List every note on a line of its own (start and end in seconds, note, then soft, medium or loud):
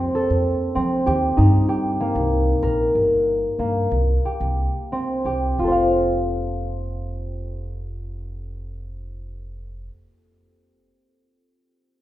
0.00 0.21 A#3 medium
0.00 0.75 C4 medium
0.00 1.06 G4 medium
0.15 2.06 A4 medium
0.30 0.53 F2 medium
0.75 0.99 F3 medium
0.75 3.75 C4 medium
1.06 1.30 D#2 medium
1.06 1.68 G4 medium
1.37 1.97 G2 medium
1.37 4.07 D#4 medium
1.69 4.04 G4 medium
2.00 3.59 A#3 medium
2.15 2.51 C2 medium
2.62 2.87 A#1 medium
2.62 4.75 A#4 medium
2.95 3.43 G1 medium
3.59 3.84 G2 medium
3.59 5.70 A#3 soft
3.91 4.16 C2 medium
4.25 5.25 G4 soft
4.40 4.66 C2 medium
4.92 7.92 C4 soft
5.25 5.51 C2 medium
5.25 7.61 G4 soft
5.59 9.88 F1 medium
5.59 9.88 F4 soft
5.63 9.93 A4 soft
5.63 9.97 C5 soft
5.72 10.01 F5 soft